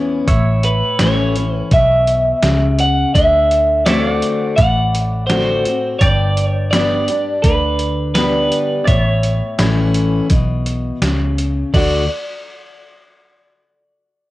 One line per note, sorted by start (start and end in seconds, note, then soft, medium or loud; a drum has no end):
0.00 0.21 E2 medium
0.00 0.25 E3 medium
0.00 0.25 B3 medium
0.00 0.25 C#4 medium
0.00 0.26 E4 medium
0.00 0.26 E5 medium
0.28 0.81 A1 medium
0.28 1.64 A2 medium
0.28 3.11 C#5 medium
0.28 3.12 E5 medium
0.28 kick loud
0.28 closed hi-hat medium
0.63 1.00 B4 medium
0.63 closed hi-hat medium
0.99 1.61 A1 medium
0.99 1.34 E3 loud
0.99 1.35 A3 loud
0.99 1.35 C#4 loud
0.99 1.34 E4 loud
0.99 1.55 C#5 medium
0.99 snare loud
0.99 closed hi-hat medium
1.35 1.71 C#4 soft
1.35 1.70 E4 medium
1.35 closed hi-hat medium
1.55 1.73 B4 medium
1.71 2.32 B1 medium
1.71 2.39 B2 medium
1.71 2.80 E5 loud
1.71 kick loud
1.71 closed hi-hat medium
2.07 closed hi-hat medium
2.43 3.04 C#2 medium
2.43 3.11 C#3 medium
2.43 snare loud
2.43 closed hi-hat medium
2.79 3.14 F#5 loud
2.79 closed hi-hat medium
3.14 4.21 D2 medium
3.14 3.84 D3 loud
3.14 3.82 E5 medium
3.14 kick loud
3.14 closed hi-hat medium
3.51 closed hi-hat medium
3.86 4.54 D3 loud
3.86 4.54 A3 loud
3.86 4.55 C4 loud
3.86 4.55 F#4 loud
3.86 4.07 C#5 medium
3.86 4.54 D5 loud
3.86 4.14 E5 medium
3.86 snare loud
3.86 closed hi-hat medium
4.07 5.99 D5 medium
4.14 6.00 F#5 medium
4.22 closed hi-hat medium
4.56 5.64 A1 medium
4.56 5.94 A2 medium
4.56 5.25 F#5 medium
4.56 kick loud
4.56 closed hi-hat medium
4.95 closed hi-hat medium
5.27 5.64 D3 medium
5.27 5.64 A3 medium
5.27 5.99 C5 medium
5.27 snare loud
5.27 closed hi-hat medium
5.31 5.64 C4 loud
5.31 5.65 F#4 medium
5.65 6.01 C4 medium
5.65 6.00 F#4 medium
5.65 closed hi-hat medium
5.99 7.07 G1 loud
5.99 7.38 G2 medium
5.99 6.47 D5 medium
5.99 8.85 D5 medium
5.99 8.85 G5 medium
5.99 kick loud
5.99 closed hi-hat medium
6.37 closed hi-hat medium
6.47 6.68 C#5 medium
6.71 7.07 G3 loud
6.71 7.07 B3 medium
6.71 7.08 D4 loud
6.71 7.08 G4 loud
6.71 7.42 D5 medium
6.71 snare loud
6.71 closed hi-hat medium
7.08 7.44 D4 soft
7.08 7.43 G4 medium
7.08 closed hi-hat medium
7.42 8.50 D2 medium
7.42 8.81 D3 medium
7.42 8.13 B4 medium
7.42 kick loud
7.42 closed hi-hat medium
7.79 closed hi-hat medium
8.14 8.84 G3 medium
8.14 8.84 B3 medium
8.14 8.84 D4 medium
8.14 8.85 G4 medium
8.14 8.83 B4 medium
8.14 snare loud
8.14 closed hi-hat medium
8.52 closed hi-hat medium
8.85 9.40 A1 medium
8.85 10.24 A2 medium
8.85 10.98 C#5 medium
8.85 9.05 D5 medium
8.85 11.71 E5 medium
8.85 kick loud
8.85 closed hi-hat medium
9.05 11.70 C#5 medium
9.23 closed hi-hat medium
9.58 10.20 A1 medium
9.58 10.27 E3 loud
9.58 10.27 A3 medium
9.58 10.27 C#4 loud
9.58 10.27 E4 loud
9.58 snare loud
9.58 closed hi-hat medium
9.95 closed hi-hat medium
10.30 10.91 B1 medium
10.30 10.99 B2 medium
10.30 kick loud
10.30 closed hi-hat medium
10.66 closed hi-hat medium
11.02 11.63 C#2 medium
11.02 11.71 C#3 medium
11.02 snare loud
11.02 closed hi-hat medium
11.38 closed hi-hat medium
11.74 12.07 D2 loud
11.74 12.02 D3 medium
11.74 12.03 A3 medium
11.74 12.03 D4 loud
11.74 12.03 F#4 loud
11.74 12.07 D5 medium
11.74 kick loud
11.74 crash medium